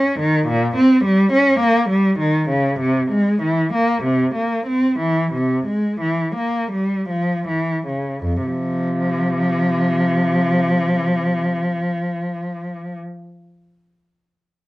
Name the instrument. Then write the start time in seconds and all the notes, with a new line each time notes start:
cello
Already playing: C#4
0.20 D#3
0.47 A#2
0.77 C4
1.05 G3
1.33 C#4
1.60 A#3
1.90 G3
2.19 D#3
2.50 C#3
2.80 C3
3.12 G#3
3.43 E3
3.74 A#3
4.04 C3
4.35 A#3
4.67 C4
5.00 E3
5.33 C3
5.66 G#3
6.01 E3
6.36 A#3
6.72 G3
7.10 F3
7.48 E3
7.87 C#3
8.24 F2
8.46 C3 F3